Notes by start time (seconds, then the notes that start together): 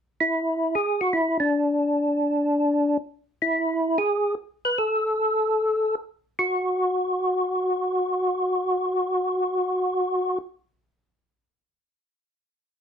0.21 E4
0.75 G#4
1.01 F#4
1.13 E4
1.40 D4
3.42 E4
3.98 G#4
4.65 B4
4.78 A4
6.39 F#4